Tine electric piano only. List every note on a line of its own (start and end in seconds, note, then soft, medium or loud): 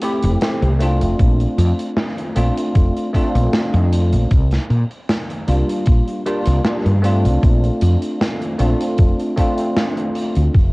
0.02 0.37 A3 medium
0.02 0.37 C4 medium
0.02 0.37 E4 medium
0.02 0.38 G4 loud
0.41 0.70 A3 medium
0.41 0.70 C4 medium
0.41 0.70 E4 medium
0.41 0.70 G4 medium
0.79 2.31 A3 medium
0.79 2.32 C4 medium
0.79 2.32 D4 medium
0.79 2.33 F4 loud
2.35 3.09 A3 medium
2.35 3.10 C4 medium
2.35 3.10 D4 medium
2.35 3.10 F4 loud
3.13 4.28 A3 loud
3.13 4.29 C4 medium
3.13 4.29 D4 medium
3.13 4.30 F4 loud
5.47 6.21 G3 medium
5.47 6.22 A#3 medium
5.47 6.22 D4 medium
5.47 6.22 F4 medium
6.25 6.60 G3 medium
6.25 6.60 A#3 medium
6.25 6.61 D4 medium
6.25 6.61 F4 loud
6.64 6.93 G3 medium
6.64 6.93 A#3 medium
6.64 6.93 D4 medium
6.64 6.94 F4 medium
7.02 8.54 A3 medium
7.02 8.55 C4 medium
7.02 8.55 D4 medium
7.02 8.56 F4 loud
8.59 9.33 A3 medium
8.59 9.33 C4 medium
8.59 9.33 D4 medium
8.59 9.34 F4 medium
9.36 10.52 A3 medium
9.36 10.52 C4 medium
9.36 10.53 D4 medium
9.36 10.53 F4 loud